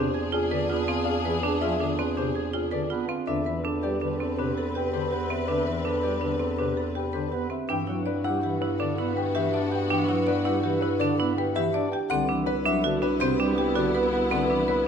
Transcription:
Already playing: bass clarinet E2, marimba D4, string section D4 G#4, grand piano C5
0.14 marimba G#4, french horn G#4
0.32 marimba F4, french horn G#4, grand piano G#4
0.51 pipe organ D3, french horn G#4, marimba B4, grand piano D5
0.69 pipe organ B3, marimba F4, french horn G#4
0.88 marimba C4, french horn G#4, grand piano F5
1.05 french horn G#4, grand piano F5
1.25 pipe organ E3, french horn G#4, marimba B4
1.43 marimba D4, french horn G#4, grand piano B4
1.61 pipe organ F3, marimba F4, french horn G#4, grand piano E5
1.80 pipe organ D3, marimba D4, french horn G#4
1.98 marimba C4, french horn G#4, grand piano B4
2.17 pipe organ C3, marimba D4, french horn G#4, grand piano C5
2.35 french horn G#4, marimba G#4
2.53 marimba F4, grand piano G#4, french horn G#4
2.71 pipe organ D3, french horn G#4, marimba B4, grand piano D5
2.90 pipe organ B3, marimba F4, french horn G#4
3.09 marimba C4, grand piano F5
3.27 bass clarinet E2, pipe organ D3, string section C4 B4, marimba D4, french horn B4, grand piano E5
3.46 pipe organ E3, marimba B4, french horn B4
3.63 marimba D4, grand piano A4, french horn B4
3.83 pipe organ G3, marimba G4, french horn B4, grand piano D5
4.01 pipe organ D3, marimba D4, french horn B4
4.18 marimba C4, grand piano A4, french horn B4
4.37 pipe organ C3, marimba D4, french horn B4, grand piano B4
4.55 marimba A4, french horn B4
4.75 marimba G4, grand piano G4, french horn B4
4.93 pipe organ D3, french horn B4, marimba B4, grand piano C5
5.12 pipe organ B3, marimba G4, french horn B4
5.30 marimba C4, french horn B4, grand piano E5
5.47 pipe organ D3, marimba D4, french horn B4, grand piano E5
5.65 pipe organ E3, french horn B4, marimba B4
5.83 marimba D4, grand piano A4, french horn B4
6.02 pipe organ G3, marimba G4, french horn B4, grand piano D5
6.21 pipe organ D3, marimba D4, french horn B4
6.39 marimba C4, grand piano A4, french horn B4
6.58 pipe organ C3, marimba D4, french horn B4, grand piano B4
6.77 marimba A4, french horn B4
6.95 marimba G4, grand piano G4, french horn B4
7.13 pipe organ D3, marimba B4, french horn B4, grand piano C5
7.32 pipe organ B3, marimba G4, french horn B4
7.50 marimba C4, grand piano E5
7.69 bass clarinet G2, pipe organ E3, string section B3 F#4, marimba D4, french horn B4, grand piano G5
7.87 pipe organ F#3, marimba E4
8.06 grand piano B4, marimba D5
8.24 pipe organ G3, marimba E4, grand piano F#5
8.43 pipe organ E3, marimba G4
8.61 marimba E4, grand piano B4
8.79 pipe organ D3, marimba D4, grand piano D5
8.98 pipe organ B3, marimba E4
9.17 grand piano G4, marimba B4
9.35 pipe organ E3, marimba G4, grand piano E5
9.54 pipe organ D4, marimba D5
9.72 marimba G4, grand piano G5
9.90 pipe organ E3, marimba D4, grand piano G5
10.08 pipe organ F#3, marimba E4
10.27 grand piano B4, marimba D5
10.45 pipe organ G3, marimba E4, grand piano F#5
10.63 pipe organ E3, marimba G4
10.81 marimba E4, grand piano B4
11.00 pipe organ D3, marimba D4, grand piano D5
11.19 pipe organ B3, marimba E4
11.37 grand piano G4, marimba B4
11.55 pipe organ E3, marimba G4, grand piano E5
11.74 pipe organ D4, marimba D5
11.92 marimba G4, grand piano G5
12.10 bass clarinet C2, pipe organ D3, string section B3 E4, marimba C4, french horn B4, grand piano F#5
12.29 pipe organ E3, marimba D4
12.46 grand piano B4, marimba B4
12.66 pipe organ F#3, marimba D4, grand piano E5
12.84 pipe organ D3, marimba F#4
13.02 marimba D4, grand piano B4
13.20 pipe organ C3, marimba C4, grand piano C5
13.39 pipe organ G3, marimba D4
13.58 grand piano G4, marimba G4
13.75 pipe organ D3, marimba F#4, grand piano D5
13.95 pipe organ B3, marimba B4
14.13 marimba F#4, grand piano F#5
14.31 pipe organ D3, marimba C4, grand piano F#5
14.49 pipe organ E3, marimba D4
14.68 marimba B4, grand piano B4

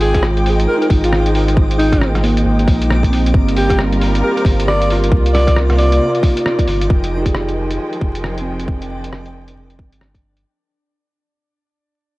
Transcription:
Already playing: sub bass G#1, string section G#3 C4 G5, synth texture D#4 D6, tine electric piano F4
0.01 alto saxophone G#4, open hi-hat
0.14 kick, cross-stick, closed hi-hat
0.23 cross-stick
0.37 closed hi-hat
0.46 tine electric piano G#4, open hi-hat
0.60 closed hi-hat
0.68 alto saxophone A#4
0.78 tine electric piano D#4, alto saxophone A#4
0.82 closed hi-hat
0.90 sub bass G#1, kick, open hi-hat
1.04 alto saxophone F4, closed hi-hat
1.13 cross-stick
1.26 closed hi-hat
1.35 open hi-hat
1.48 closed hi-hat
1.57 sub bass G#1, kick
1.71 closed hi-hat
1.79 alto saxophone D#4, open hi-hat
1.92 kick, cross-stick, closed hi-hat
2.01 cross-stick
2.15 cross-stick, closed hi-hat
2.23 tine electric piano A#3, open hi-hat
2.37 closed hi-hat
2.45 sub bass G#1
2.59 closed hi-hat
2.68 sub bass A#1, kick, open hi-hat
2.82 closed hi-hat
2.90 cross-stick
3.03 kick, closed hi-hat
3.10 tine electric piano C4, open hi-hat
3.26 closed hi-hat
3.34 sub bass G1, string section G3 F4 A#4, kick
3.48 closed hi-hat
3.56 alto saxophone G4, open hi-hat
3.70 kick, cross-stick, closed hi-hat
3.79 cross-stick
3.92 closed hi-hat
4.01 open hi-hat
4.15 closed hi-hat
4.23 alto saxophone A#4
4.32 tine electric piano G4
4.37 tine electric piano A#4, alto saxophone A#4, closed hi-hat
4.42 sub bass G1, tine electric piano C5, kick
4.46 open hi-hat
4.60 closed hi-hat
4.68 alto saxophone D5, cross-stick
4.82 closed hi-hat
4.90 tine electric piano F4, open hi-hat
4.97 tine electric piano A#4
5.04 closed hi-hat
5.12 sub bass C2, string section C3 A#3 D5, kick
5.26 closed hi-hat
5.33 alto saxophone D5, cross-stick, open hi-hat
5.47 kick, cross-stick, closed hi-hat
5.56 cross-stick
5.70 cross-stick, closed hi-hat
5.78 alto saxophone D5, open hi-hat
5.83 tine electric piano F4
5.92 closed hi-hat
6.15 closed hi-hat
6.23 kick, open hi-hat
6.37 closed hi-hat
6.46 cross-stick
6.59 kick, closed hi-hat
6.68 sub bass G1, open hi-hat
6.81 closed hi-hat
6.90 sub bass F1, string section D#3 F3 G#3 G5, synth texture D4 D5, kick
7.04 closed hi-hat
7.18 tine electric piano D#4
7.22 tine electric piano G4, kick, closed hi-hat
7.27 tine electric piano G#4
7.35 cross-stick
7.49 closed hi-hat
7.71 closed hi-hat
7.93 closed hi-hat
8.01 sub bass F1, kick
8.15 closed hi-hat
8.24 cross-stick
8.38 tine electric piano C4, closed hi-hat
8.60 closed hi-hat
8.68 sub bass F1, kick
8.82 closed hi-hat
9.04 closed hi-hat
9.13 cross-stick
9.26 closed hi-hat
9.48 closed hi-hat
9.57 sub bass F1
9.70 closed hi-hat
9.79 sub bass G1, kick
9.93 closed hi-hat
10.01 cross-stick
10.15 kick, closed hi-hat
10.37 closed hi-hat

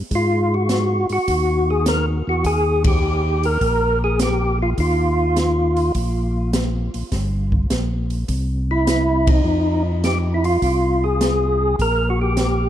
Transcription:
0.11 tonewheel organ G#2, kick, open hi-hat
0.15 tonewheel organ F4
0.54 tonewheel organ F#4
0.69 snare, closed hi-hat
1.09 tonewheel organ G#2 F#4, open hi-hat
1.28 tonewheel organ D#2, kick, open hi-hat
1.70 tonewheel organ G#4
1.86 tonewheel organ A#4, snare, closed hi-hat
2.27 tonewheel organ E2 F#4
2.44 tonewheel organ D#2 G#4, kick, open hi-hat
2.84 tonewheel organ G4, kick, ride
3.43 tonewheel organ A#4, open hi-hat
3.61 tonewheel organ A#1, kick, open hi-hat
4.04 tonewheel organ G#4
4.19 tonewheel organ G4, snare, closed hi-hat
4.62 tonewheel organ F4
4.78 tonewheel organ D#2 F4, kick, open hi-hat
5.36 snare, closed hi-hat
5.77 open hi-hat
5.95 tonewheel organ A#1, kick, open hi-hat
6.53 snare, closed hi-hat
6.94 tonewheel organ A#1, open hi-hat
7.12 tonewheel organ G1, kick, snare, open hi-hat
7.52 kick
7.70 tonewheel organ A#1, snare, closed hi-hat
8.10 open hi-hat
8.28 tonewheel organ C2, kick, open hi-hat
8.71 tonewheel organ E4
8.87 snare, closed hi-hat
9.27 tonewheel organ D#4, kick, ride
9.44 tonewheel organ F2
10.04 tonewheel organ G4, snare, closed hi-hat
10.34 tonewheel organ E4
10.44 tonewheel organ F4, open hi-hat
10.62 tonewheel organ C2, kick, open hi-hat
11.04 tonewheel organ G#4
11.21 snare, closed hi-hat
11.79 tonewheel organ A#1 A#4, kick, open hi-hat
12.10 tonewheel organ F#4
12.21 tonewheel organ G4
12.37 snare, closed hi-hat

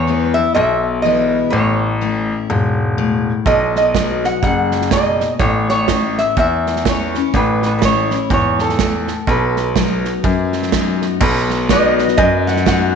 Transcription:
Already playing: grand piano E2, steel-string acoustic guitar E2, resonator guitar played with a steel bar C#5
0.07 steel-string acoustic guitar E3 G#3 B3 E4
0.34 steel-string acoustic guitar E4, resonator guitar played with a steel bar E5
0.38 steel-string acoustic guitar B3
0.54 grand piano B1, steel-string acoustic guitar B2, resonator guitar played with a steel bar E5
1.02 steel-string acoustic guitar E3 G#3 B3 E4, resonator guitar played with a steel bar D#5
1.50 grand piano A1, steel-string acoustic guitar A2, resonator guitar played with a steel bar C#5
2.01 steel-string acoustic guitar E3 A3 C#4 E4
2.50 grand piano E1, steel-string acoustic guitar G#2
2.98 steel-string acoustic guitar A2
3.46 grand piano B1, steel-string acoustic guitar B2, resonator guitar played with a steel bar D#5, kick, snare
3.76 resonator guitar played with a steel bar D#5, snare
3.95 steel-string acoustic guitar F#3 B3 D#4 F#4, kick, snare, hi-hat pedal
4.24 resonator guitar played with a steel bar F#5, snare
4.42 grand piano F#1, steel-string acoustic guitar F#2, resonator guitar played with a steel bar F#5, kick, snare
4.71 snare
4.81 snare
4.91 steel-string acoustic guitar B2, resonator guitar played with a steel bar D#5, kick, snare, hi-hat pedal
5.21 snare
5.39 grand piano A1, steel-string acoustic guitar A2, resonator guitar played with a steel bar C#5, kick, snare
5.70 resonator guitar played with a steel bar C#5, snare
5.88 steel-string acoustic guitar E3 A3 C#4 E4, kick, snare, hi-hat pedal
6.18 resonator guitar played with a steel bar E5, snare
6.37 steel-string acoustic guitar E2, grand piano E2, resonator guitar played with a steel bar E5, kick, snare
6.67 snare
6.76 snare
6.85 steel-string acoustic guitar E3 A3 C#4 E4, resonator guitar played with a steel bar C#5, kick, snare, hi-hat pedal
7.15 steel-string acoustic guitar C#4 E4, snare
7.34 grand piano A1, steel-string acoustic guitar A2, resonator guitar played with a steel bar B4, kick, snare
7.62 resonator guitar played with a steel bar B4, snare
7.79 resonator guitar played with a steel bar B4, kick, snare, hi-hat pedal
7.83 steel-string acoustic guitar E3 A3 C#4 E4, resonator guitar played with a steel bar C#5
8.11 steel-string acoustic guitar C#4 E4, snare
8.30 grand piano E2, steel-string acoustic guitar G#2, resonator guitar played with a steel bar C#5, kick, snare
8.59 resonator guitar played with a steel bar A4, snare
8.69 snare
8.79 steel-string acoustic guitar A2, kick, snare, hi-hat pedal
9.08 snare
9.27 grand piano B1, steel-string acoustic guitar B2, resonator guitar played with a steel bar B4, kick, snare
9.57 snare
9.76 steel-string acoustic guitar F#3 B3 D#4 F#4, kick, snare, hi-hat pedal
10.05 snare
10.23 steel-string acoustic guitar F#2, grand piano F#2, kick, snare
10.53 snare
10.63 snare
10.72 steel-string acoustic guitar F#3 B3 D#4 F#4, kick, snare, hi-hat pedal
11.02 snare
11.20 grand piano B1, steel-string acoustic guitar B2, resonator guitar played with a steel bar B4, kick, snare, crash
11.50 snare
11.69 steel-string acoustic guitar F#3 B3 D#4 F#4, pedal steel guitar B4 D#5, resonator guitar played with a steel bar D#5, kick, snare, hi-hat pedal
11.73 pedal steel guitar F#5
11.99 snare
12.08 snare
12.17 grand piano F#2, steel-string acoustic guitar F#2, resonator guitar played with a steel bar D#5, kick, snare
12.47 resonator guitar played with a steel bar F#5, snare
12.56 snare
12.66 steel-string acoustic guitar F#3 B3 D#4 F#4, resonator guitar played with a steel bar F#5, kick, snare, hi-hat pedal

